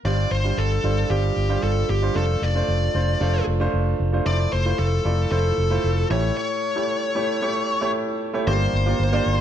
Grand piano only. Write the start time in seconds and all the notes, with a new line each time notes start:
0.05 G2 G3 D4 F4 C5
0.44 G3 D4 F4 C5
0.83 G3 D4 F4 C5
1.10 G3 D4 F4 C5
1.49 G3 D4 F4 C5
2.02 G3 D4 F4 C5
2.15 A3 D4 F4 C5
2.55 A3 D4 F4 C5
2.94 A3 D4 F4 C5
3.20 A3 D4 F4 C5
3.60 A3 D4 F4 C5
4.13 A3 D4 F4 C5
4.25 A3 E4 F4 C5
4.65 A3 E4 F4 C5
5.05 A3 E4 F4 D5
5.31 A3 E4 F4 C5
5.70 A3 E4 F4 C5
6.10 A2 A3 E4 G4 C#5
6.75 A3 E4 G4 C#5
7.15 A3 E4 G4 C#5
7.42 A3 E4 G4 C#5
7.81 A3 E4 G4 C#5
8.34 A3 E4 G4 C#5
8.47 G2 A#3 D4 F4 G4 D5
8.86 A#3 D4 F4 G4 D5
9.12 A#3 D4 F4 G4 D5